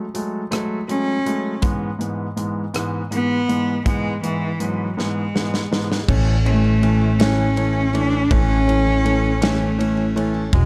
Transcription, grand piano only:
0.14 F#3 G#3 A3
0.51 F#3 G#3 A3
0.88 F#3 G#3 A3
1.26 F#3 G#3 A3
1.62 G#2 E3 G#3 B3
1.99 G#2 E3 G#3 B3
2.36 G#2 E3 G#3 B3
2.74 G#2 E3 G#3 B3
3.11 G#2 E3 G#3 B3
3.48 G#2 E3 G#3 B3
3.85 G#2 E3 G#3 B3
4.23 G#2 E3 G#3 B3
4.60 G#2 E3 G#3 B3
4.97 G#2 E3 G#3 B3
5.35 G#2 E3 G#3 B3
5.71 G#2 E3 G#3 B3
6.08 E3 A3 C#4
6.45 E3 A3 C#4
6.82 E3 A3 C#4
7.20 E3 A3 C#4
7.57 E3 A3 C#4
7.94 E3 A3 C#4
8.31 E3 A3 C#4
8.67 E3 A3 C#4
9.04 E3 A3 C#4
9.41 E3 A3 C#4
9.78 E3 A3 C#4
10.16 E3 A3 C#4
10.52 E3 F#3 G#3

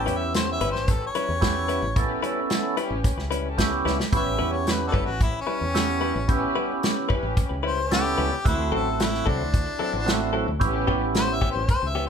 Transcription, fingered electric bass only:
0.07 E2
0.61 G1
0.74 A1
1.29 E2
1.82 A1
2.90 A1
3.17 C#2
3.85 C#2
4.13 A1
4.26 A1
4.40 E2
4.93 G1
5.07 A1
5.61 E2
6.16 A1
7.23 A1
7.50 C#2
8.18 C#2
8.46 D2
8.58 D2
8.71 A1
9.27 C2
9.39 D2
9.93 A1
10.48 D2
10.61 A1
11.56 A1
11.83 C#2

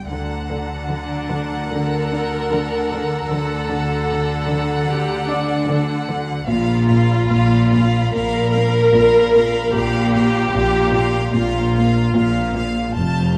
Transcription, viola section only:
0.90 D4
1.72 A#4
3.30 A4
4.89 G4
5.28 D4
6.48 F4
8.13 A#4
9.73 G4
11.34 F4

